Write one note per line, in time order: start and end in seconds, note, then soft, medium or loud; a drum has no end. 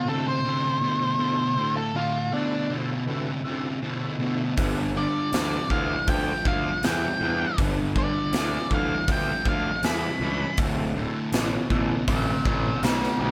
0.05 0.40 D2 medium
0.05 0.40 C3 medium
0.05 0.31 D3 medium
0.05 0.31 E4 medium
0.05 0.30 F#4 medium
0.05 0.30 A4 medium
0.05 0.26 A4 medium
0.05 0.30 C5 loud
0.28 1.73 C5 loud
0.44 0.78 D2 medium
0.44 0.78 C3 medium
0.44 0.68 D3 medium
0.44 0.68 E4 medium
0.44 0.68 F#4 medium
0.44 0.68 A4 medium
0.44 0.68 D5 medium
0.80 1.15 D2 medium
0.80 1.15 B2 medium
0.80 1.05 D3 medium
0.80 1.05 E4 medium
0.80 1.05 F#4 medium
0.80 1.05 A4 medium
0.80 1.05 C5 medium
1.18 1.53 D2 medium
1.18 1.53 B2 medium
1.18 1.43 D3 medium
1.18 1.43 E4 medium
1.18 1.44 F#4 medium
1.18 1.43 A4 medium
1.18 1.43 C5 medium
1.56 1.90 D2 medium
1.56 1.91 A2 medium
1.56 1.81 D3 medium
1.56 1.81 E4 medium
1.56 1.80 F#4 medium
1.56 1.80 A4 medium
1.56 1.81 C5 medium
1.77 1.94 A4 medium
1.94 2.28 D2 medium
1.94 2.28 A2 medium
1.94 2.19 D3 medium
1.94 2.19 E4 medium
1.94 2.32 F4 medium
1.94 2.19 F#4 medium
1.94 2.19 A4 medium
1.94 2.19 D5 medium
2.31 2.65 D2 medium
2.31 2.66 B2 medium
2.31 2.56 D3 medium
2.31 2.69 D4 medium
2.31 2.56 E4 medium
2.31 2.56 F#4 medium
2.31 2.56 A4 medium
2.31 2.56 C5 medium
2.69 3.04 D2 medium
2.69 3.04 B2 medium
2.69 2.94 D3 medium
2.69 2.94 E4 medium
2.69 2.94 F#4 medium
2.69 2.93 A4 medium
2.69 2.94 C5 medium
3.06 3.41 D2 medium
3.06 3.41 C3 medium
3.06 3.31 D3 loud
3.06 3.31 E4 loud
3.06 3.31 F#4 loud
3.06 3.31 A4 medium
3.06 3.31 B4 loud
3.44 3.78 D2 medium
3.44 3.79 C3 medium
3.44 3.68 D3 medium
3.44 3.68 E4 medium
3.44 3.69 F#4 medium
3.44 3.69 A4 medium
3.44 3.69 C5 loud
3.82 4.16 D2 medium
3.82 4.16 B2 medium
3.82 4.06 D3 medium
3.82 4.07 E4 medium
3.82 4.06 F#4 medium
3.82 4.07 A4 medium
3.82 4.07 C5 medium
3.82 4.00 A5 medium
4.00 4.53 E5 medium
4.19 4.53 D2 medium
4.19 4.53 B2 medium
4.19 4.44 D3 medium
4.19 4.44 E4 medium
4.19 4.44 F#4 medium
4.19 4.44 A4 medium
4.19 4.44 C5 medium
4.56 5.05 G1 medium
4.56 4.91 G2 medium
4.56 4.91 D3 medium
4.56 4.82 D4 loud
4.56 4.82 F4 medium
4.56 4.82 A4 medium
4.56 4.82 B4 loud
4.56 kick medium
4.56 open hi-hat medium
4.94 5.28 G2 medium
4.94 5.29 D3 medium
4.94 5.20 D4 medium
4.94 5.20 F4 medium
4.94 5.20 A4 medium
4.94 5.69 D5 medium
4.94 5.20 D5 medium
5.32 5.57 D2 medium
5.32 5.66 G2 medium
5.32 5.67 E3 medium
5.32 5.57 D4 medium
5.32 5.58 F4 medium
5.32 5.58 A4 medium
5.32 5.58 B4 medium
5.32 snare loud
5.32 open hi-hat medium
5.70 5.94 D2 medium
5.70 6.04 G2 medium
5.70 6.04 E3 medium
5.70 5.95 D4 medium
5.70 5.95 F4 medium
5.70 5.95 A4 medium
5.70 5.95 B4 medium
5.70 6.07 F5 medium
5.70 kick medium
6.07 6.32 D2 medium
6.07 6.41 G2 medium
6.07 6.42 F3 medium
6.07 6.31 D4 medium
6.07 6.32 F4 medium
6.07 6.31 A4 medium
6.07 6.32 B4 loud
6.07 6.45 G5 medium
6.07 kick loud
6.07 open hi-hat medium
6.44 6.69 D2 medium
6.44 6.79 G2 medium
6.44 6.79 F3 medium
6.44 6.69 D4 medium
6.44 6.69 F4 medium
6.44 6.69 A4 medium
6.44 6.69 B4 medium
6.44 kick medium
6.48 6.83 F5 medium
6.83 7.07 E2 medium
6.83 7.17 G2 medium
6.83 7.17 E3 medium
6.83 7.07 D4 medium
6.83 7.07 F4 medium
6.83 7.07 A4 medium
6.83 7.08 B4 medium
6.83 7.57 G5 medium
6.83 snare loud
6.83 open hi-hat soft
7.21 7.44 E2 medium
7.21 7.54 G2 medium
7.21 7.55 E3 medium
7.21 7.45 D4 medium
7.21 7.45 F4 medium
7.21 7.45 A4 medium
7.21 7.45 B4 medium
7.58 8.06 G1 medium
7.58 7.92 G2 medium
7.58 7.92 D3 medium
7.58 7.83 D4 medium
7.58 7.83 F4 medium
7.58 7.82 A4 medium
7.58 7.82 B4 loud
7.58 kick loud
7.58 open hi-hat medium
7.95 8.30 G2 medium
7.95 8.30 D3 medium
7.95 8.19 D4 medium
7.95 8.19 F4 medium
7.95 8.20 A4 medium
7.95 8.20 B4 medium
7.95 8.70 D5 medium
7.95 kick medium
8.31 8.57 D2 medium
8.31 8.67 G2 medium
8.31 8.67 E3 medium
8.31 8.57 D4 medium
8.31 8.57 F4 medium
8.31 8.56 A4 medium
8.31 8.57 B4 medium
8.31 snare loud
8.31 open hi-hat medium
8.69 8.95 D2 medium
8.69 9.04 G2 medium
8.69 9.04 E3 medium
8.69 8.94 D4 medium
8.69 8.95 F4 medium
8.69 8.94 A4 medium
8.69 8.94 B4 medium
8.69 kick medium
8.74 9.09 F5 medium
9.07 9.32 D2 loud
9.07 9.42 G2 medium
9.07 9.42 F3 medium
9.07 9.32 D4 medium
9.07 9.32 F4 medium
9.07 9.33 A4 medium
9.07 9.32 B4 loud
9.07 kick loud
9.07 open hi-hat medium
9.12 9.47 G5 loud
9.44 9.69 D2 medium
9.44 9.80 G2 medium
9.44 9.80 F3 medium
9.44 9.69 D4 medium
9.44 9.69 F4 medium
9.44 9.69 A4 medium
9.44 9.69 D5 medium
9.44 kick medium
9.49 9.84 F5 medium
9.82 10.07 E2 medium
9.82 10.17 G2 medium
9.82 10.17 E3 medium
9.82 10.07 D4 medium
9.82 10.08 F4 medium
9.82 10.08 A4 medium
9.82 10.08 B4 medium
9.82 10.57 B5 medium
9.82 snare loud
9.82 open hi-hat soft
10.20 10.44 C#2 medium
10.20 10.55 G2 medium
10.20 10.55 E3 medium
10.20 10.45 D4 medium
10.20 10.45 F4 medium
10.20 10.45 A4 medium
10.20 10.46 B4 medium
10.58 11.06 D1 medium
10.58 10.92 D2 medium
10.58 10.92 A2 medium
10.58 10.83 E4 medium
10.58 10.83 F#4 medium
10.58 10.83 A4 medium
10.58 10.83 C5 loud
10.58 kick loud
10.58 open hi-hat medium
10.96 11.30 D2 medium
10.96 11.30 A2 medium
10.96 11.20 E4 medium
10.96 11.20 F#4 medium
10.96 11.20 A4 medium
10.96 11.20 C5 medium
11.32 11.56 A1 medium
11.32 11.67 D2 medium
11.32 11.67 B2 medium
11.32 11.57 E4 medium
11.32 11.57 F#4 medium
11.32 11.57 A4 medium
11.32 11.57 C5 medium
11.32 snare loud
11.32 open hi-hat medium
11.70 11.94 A1 medium
11.70 12.04 D2 medium
11.70 12.05 B2 medium
11.70 11.95 E4 medium
11.70 11.95 F#4 medium
11.70 11.95 A4 medium
11.70 11.95 C5 loud
11.70 kick medium
12.07 12.32 A1 medium
12.07 12.42 D2 medium
12.07 12.42 C3 medium
12.07 12.32 E4 loud
12.07 12.32 F#4 medium
12.07 12.32 A4 medium
12.07 12.32 D5 loud
12.07 12.46 D5 medium
12.07 12.45 F5 medium
12.07 kick loud
12.07 open hi-hat soft
12.45 12.69 A1 loud
12.45 12.79 D2 medium
12.45 12.80 C3 medium
12.45 12.70 E4 medium
12.45 12.70 F#4 medium
12.45 12.70 A4 medium
12.45 12.70 C5 medium
12.45 12.81 D5 medium
12.45 12.83 F5 medium
12.45 kick medium
12.83 13.07 B1 medium
12.83 13.17 D2 medium
12.83 13.17 B2 medium
12.83 13.08 E4 medium
12.83 13.18 F#4 medium
12.83 13.08 F#4 soft
12.83 13.08 A4 medium
12.83 13.08 C5 medium
12.83 13.20 D5 medium
12.83 snare loud
12.83 open hi-hat medium
13.03 snare soft
13.20 13.31 B1 medium
13.20 13.31 D2 medium
13.20 13.31 B2 medium
13.20 13.31 E4 medium
13.20 13.31 F#4 medium
13.20 13.31 A4 medium
13.20 13.31 B4 medium
13.20 13.31 D5 medium